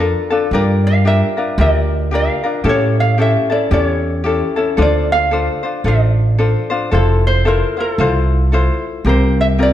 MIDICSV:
0, 0, Header, 1, 4, 480
1, 0, Start_track
1, 0, Key_signature, -1, "minor"
1, 0, Tempo, 533333
1, 465, Time_signature, 4, 2, 24, 8
1, 8757, End_track
2, 0, Start_track
2, 0, Title_t, "Ukulele"
2, 0, Program_c, 0, 24
2, 0, Note_on_c, 0, 70, 76
2, 252, Note_off_c, 0, 70, 0
2, 492, Note_on_c, 0, 74, 91
2, 776, Note_off_c, 0, 74, 0
2, 781, Note_on_c, 0, 77, 98
2, 963, Note_off_c, 0, 77, 0
2, 967, Note_on_c, 0, 76, 102
2, 1445, Note_off_c, 0, 76, 0
2, 1449, Note_on_c, 0, 74, 93
2, 1931, Note_off_c, 0, 74, 0
2, 1936, Note_on_c, 0, 77, 93
2, 2279, Note_off_c, 0, 77, 0
2, 2423, Note_on_c, 0, 73, 94
2, 2699, Note_off_c, 0, 73, 0
2, 2703, Note_on_c, 0, 77, 93
2, 2885, Note_off_c, 0, 77, 0
2, 2894, Note_on_c, 0, 76, 88
2, 3165, Note_off_c, 0, 76, 0
2, 3169, Note_on_c, 0, 74, 85
2, 3358, Note_off_c, 0, 74, 0
2, 3362, Note_on_c, 0, 73, 84
2, 4087, Note_off_c, 0, 73, 0
2, 4339, Note_on_c, 0, 74, 95
2, 4606, Note_off_c, 0, 74, 0
2, 4610, Note_on_c, 0, 77, 93
2, 5287, Note_off_c, 0, 77, 0
2, 5291, Note_on_c, 0, 74, 88
2, 6011, Note_off_c, 0, 74, 0
2, 6251, Note_on_c, 0, 69, 87
2, 6536, Note_off_c, 0, 69, 0
2, 6542, Note_on_c, 0, 72, 93
2, 6725, Note_off_c, 0, 72, 0
2, 6730, Note_on_c, 0, 70, 91
2, 7016, Note_off_c, 0, 70, 0
2, 7024, Note_on_c, 0, 69, 88
2, 7934, Note_off_c, 0, 69, 0
2, 8181, Note_on_c, 0, 72, 84
2, 8462, Note_off_c, 0, 72, 0
2, 8467, Note_on_c, 0, 76, 96
2, 8515, Note_off_c, 0, 76, 0
2, 8663, Note_on_c, 0, 74, 92
2, 8736, Note_off_c, 0, 74, 0
2, 8757, End_track
3, 0, Start_track
3, 0, Title_t, "Ukulele"
3, 0, Program_c, 1, 24
3, 0, Note_on_c, 1, 62, 70
3, 0, Note_on_c, 1, 65, 61
3, 0, Note_on_c, 1, 70, 63
3, 3, Note_on_c, 1, 69, 67
3, 263, Note_off_c, 1, 69, 0
3, 273, Note_off_c, 1, 65, 0
3, 274, Note_off_c, 1, 70, 0
3, 274, Note_on_c, 1, 69, 67
3, 277, Note_off_c, 1, 62, 0
3, 284, Note_on_c, 1, 65, 58
3, 288, Note_on_c, 1, 62, 54
3, 465, Note_off_c, 1, 69, 0
3, 467, Note_off_c, 1, 62, 0
3, 470, Note_off_c, 1, 65, 0
3, 477, Note_on_c, 1, 67, 74
3, 478, Note_on_c, 1, 62, 73
3, 484, Note_on_c, 1, 65, 75
3, 488, Note_on_c, 1, 70, 79
3, 939, Note_off_c, 1, 62, 0
3, 940, Note_off_c, 1, 67, 0
3, 944, Note_on_c, 1, 67, 65
3, 947, Note_off_c, 1, 65, 0
3, 949, Note_on_c, 1, 62, 66
3, 951, Note_off_c, 1, 70, 0
3, 958, Note_on_c, 1, 65, 62
3, 962, Note_on_c, 1, 70, 65
3, 1222, Note_off_c, 1, 70, 0
3, 1229, Note_off_c, 1, 65, 0
3, 1233, Note_off_c, 1, 67, 0
3, 1233, Note_on_c, 1, 70, 48
3, 1236, Note_off_c, 1, 62, 0
3, 1240, Note_on_c, 1, 65, 55
3, 1246, Note_on_c, 1, 62, 45
3, 1425, Note_off_c, 1, 62, 0
3, 1425, Note_off_c, 1, 70, 0
3, 1427, Note_on_c, 1, 67, 66
3, 1428, Note_off_c, 1, 65, 0
3, 1436, Note_on_c, 1, 62, 62
3, 1437, Note_on_c, 1, 65, 61
3, 1442, Note_on_c, 1, 70, 73
3, 1897, Note_off_c, 1, 67, 0
3, 1899, Note_off_c, 1, 62, 0
3, 1900, Note_on_c, 1, 67, 64
3, 1905, Note_off_c, 1, 65, 0
3, 1910, Note_on_c, 1, 62, 65
3, 1913, Note_off_c, 1, 70, 0
3, 1915, Note_on_c, 1, 65, 68
3, 1924, Note_on_c, 1, 70, 65
3, 2182, Note_off_c, 1, 70, 0
3, 2191, Note_off_c, 1, 65, 0
3, 2191, Note_off_c, 1, 67, 0
3, 2192, Note_on_c, 1, 70, 60
3, 2196, Note_off_c, 1, 62, 0
3, 2201, Note_on_c, 1, 65, 49
3, 2210, Note_on_c, 1, 62, 43
3, 2374, Note_on_c, 1, 67, 69
3, 2376, Note_off_c, 1, 62, 0
3, 2379, Note_on_c, 1, 61, 85
3, 2380, Note_off_c, 1, 65, 0
3, 2384, Note_off_c, 1, 70, 0
3, 2384, Note_on_c, 1, 64, 78
3, 2389, Note_on_c, 1, 69, 84
3, 2849, Note_off_c, 1, 67, 0
3, 2852, Note_off_c, 1, 61, 0
3, 2860, Note_on_c, 1, 67, 68
3, 2862, Note_off_c, 1, 64, 0
3, 2863, Note_on_c, 1, 61, 64
3, 2872, Note_off_c, 1, 69, 0
3, 2873, Note_on_c, 1, 64, 68
3, 2876, Note_on_c, 1, 69, 66
3, 3136, Note_off_c, 1, 69, 0
3, 3147, Note_on_c, 1, 69, 57
3, 3148, Note_off_c, 1, 64, 0
3, 3151, Note_off_c, 1, 67, 0
3, 3153, Note_off_c, 1, 61, 0
3, 3159, Note_on_c, 1, 64, 53
3, 3165, Note_on_c, 1, 61, 40
3, 3334, Note_off_c, 1, 61, 0
3, 3337, Note_on_c, 1, 67, 59
3, 3338, Note_off_c, 1, 64, 0
3, 3342, Note_off_c, 1, 69, 0
3, 3345, Note_on_c, 1, 61, 62
3, 3349, Note_on_c, 1, 64, 58
3, 3357, Note_on_c, 1, 69, 65
3, 3803, Note_off_c, 1, 67, 0
3, 3811, Note_off_c, 1, 61, 0
3, 3814, Note_on_c, 1, 67, 68
3, 3817, Note_off_c, 1, 64, 0
3, 3822, Note_on_c, 1, 61, 58
3, 3828, Note_on_c, 1, 64, 59
3, 3830, Note_off_c, 1, 69, 0
3, 3834, Note_on_c, 1, 69, 67
3, 4095, Note_off_c, 1, 69, 0
3, 4103, Note_off_c, 1, 64, 0
3, 4106, Note_on_c, 1, 69, 61
3, 4108, Note_off_c, 1, 67, 0
3, 4112, Note_off_c, 1, 61, 0
3, 4114, Note_on_c, 1, 64, 55
3, 4123, Note_on_c, 1, 61, 53
3, 4282, Note_off_c, 1, 69, 0
3, 4293, Note_on_c, 1, 69, 74
3, 4299, Note_off_c, 1, 61, 0
3, 4300, Note_off_c, 1, 64, 0
3, 4303, Note_on_c, 1, 62, 77
3, 4303, Note_on_c, 1, 65, 77
3, 4310, Note_on_c, 1, 72, 78
3, 4777, Note_off_c, 1, 62, 0
3, 4777, Note_off_c, 1, 69, 0
3, 4780, Note_on_c, 1, 69, 58
3, 4788, Note_on_c, 1, 62, 58
3, 4793, Note_off_c, 1, 65, 0
3, 4793, Note_off_c, 1, 72, 0
3, 4797, Note_on_c, 1, 65, 65
3, 4797, Note_on_c, 1, 72, 65
3, 5056, Note_off_c, 1, 72, 0
3, 5066, Note_on_c, 1, 72, 51
3, 5071, Note_off_c, 1, 65, 0
3, 5072, Note_off_c, 1, 69, 0
3, 5076, Note_off_c, 1, 62, 0
3, 5081, Note_on_c, 1, 65, 49
3, 5087, Note_on_c, 1, 62, 44
3, 5258, Note_off_c, 1, 62, 0
3, 5261, Note_off_c, 1, 65, 0
3, 5262, Note_off_c, 1, 72, 0
3, 5263, Note_on_c, 1, 69, 56
3, 5269, Note_on_c, 1, 62, 62
3, 5272, Note_on_c, 1, 65, 59
3, 5281, Note_on_c, 1, 72, 58
3, 5739, Note_off_c, 1, 62, 0
3, 5742, Note_off_c, 1, 69, 0
3, 5746, Note_on_c, 1, 69, 66
3, 5749, Note_on_c, 1, 62, 63
3, 5752, Note_off_c, 1, 65, 0
3, 5753, Note_off_c, 1, 72, 0
3, 5756, Note_on_c, 1, 65, 59
3, 5757, Note_on_c, 1, 72, 63
3, 6018, Note_off_c, 1, 72, 0
3, 6029, Note_off_c, 1, 65, 0
3, 6029, Note_on_c, 1, 72, 65
3, 6035, Note_off_c, 1, 69, 0
3, 6037, Note_off_c, 1, 62, 0
3, 6040, Note_on_c, 1, 65, 56
3, 6047, Note_on_c, 1, 62, 46
3, 6218, Note_off_c, 1, 72, 0
3, 6222, Note_on_c, 1, 69, 63
3, 6223, Note_off_c, 1, 65, 0
3, 6226, Note_on_c, 1, 64, 76
3, 6231, Note_off_c, 1, 62, 0
3, 6234, Note_on_c, 1, 65, 76
3, 6236, Note_on_c, 1, 72, 69
3, 6695, Note_off_c, 1, 69, 0
3, 6698, Note_off_c, 1, 64, 0
3, 6706, Note_on_c, 1, 69, 59
3, 6708, Note_on_c, 1, 64, 67
3, 6715, Note_off_c, 1, 65, 0
3, 6718, Note_on_c, 1, 65, 62
3, 6719, Note_off_c, 1, 72, 0
3, 6723, Note_on_c, 1, 72, 72
3, 6980, Note_off_c, 1, 72, 0
3, 6988, Note_off_c, 1, 65, 0
3, 6991, Note_on_c, 1, 72, 58
3, 6995, Note_off_c, 1, 69, 0
3, 6997, Note_off_c, 1, 64, 0
3, 6999, Note_on_c, 1, 65, 49
3, 7008, Note_on_c, 1, 64, 37
3, 7185, Note_off_c, 1, 65, 0
3, 7185, Note_off_c, 1, 72, 0
3, 7187, Note_off_c, 1, 64, 0
3, 7189, Note_on_c, 1, 69, 71
3, 7196, Note_on_c, 1, 65, 88
3, 7198, Note_on_c, 1, 64, 76
3, 7205, Note_on_c, 1, 72, 91
3, 7657, Note_off_c, 1, 69, 0
3, 7665, Note_off_c, 1, 64, 0
3, 7668, Note_on_c, 1, 69, 65
3, 7675, Note_off_c, 1, 65, 0
3, 7676, Note_on_c, 1, 64, 72
3, 7679, Note_on_c, 1, 65, 73
3, 7682, Note_off_c, 1, 72, 0
3, 7686, Note_on_c, 1, 72, 81
3, 8144, Note_off_c, 1, 72, 0
3, 8148, Note_off_c, 1, 65, 0
3, 8148, Note_off_c, 1, 69, 0
3, 8148, Note_on_c, 1, 67, 63
3, 8151, Note_on_c, 1, 60, 69
3, 8152, Note_off_c, 1, 64, 0
3, 8157, Note_on_c, 1, 65, 65
3, 8162, Note_on_c, 1, 70, 84
3, 8617, Note_off_c, 1, 60, 0
3, 8621, Note_off_c, 1, 67, 0
3, 8622, Note_off_c, 1, 65, 0
3, 8625, Note_on_c, 1, 67, 55
3, 8628, Note_on_c, 1, 60, 62
3, 8633, Note_on_c, 1, 65, 61
3, 8635, Note_off_c, 1, 70, 0
3, 8639, Note_on_c, 1, 70, 63
3, 8757, Note_off_c, 1, 60, 0
3, 8757, Note_off_c, 1, 65, 0
3, 8757, Note_off_c, 1, 67, 0
3, 8757, Note_off_c, 1, 70, 0
3, 8757, End_track
4, 0, Start_track
4, 0, Title_t, "Upright bass"
4, 0, Program_c, 2, 32
4, 0, Note_on_c, 2, 41, 96
4, 122, Note_off_c, 2, 41, 0
4, 461, Note_on_c, 2, 43, 92
4, 1086, Note_off_c, 2, 43, 0
4, 1420, Note_on_c, 2, 38, 109
4, 2046, Note_off_c, 2, 38, 0
4, 2376, Note_on_c, 2, 45, 99
4, 3003, Note_off_c, 2, 45, 0
4, 3339, Note_on_c, 2, 40, 98
4, 3965, Note_off_c, 2, 40, 0
4, 4301, Note_on_c, 2, 38, 99
4, 4927, Note_off_c, 2, 38, 0
4, 5258, Note_on_c, 2, 33, 93
4, 5885, Note_off_c, 2, 33, 0
4, 6230, Note_on_c, 2, 29, 93
4, 6853, Note_off_c, 2, 29, 0
4, 7185, Note_on_c, 2, 36, 97
4, 7810, Note_off_c, 2, 36, 0
4, 8141, Note_on_c, 2, 36, 98
4, 8757, Note_off_c, 2, 36, 0
4, 8757, End_track
0, 0, End_of_file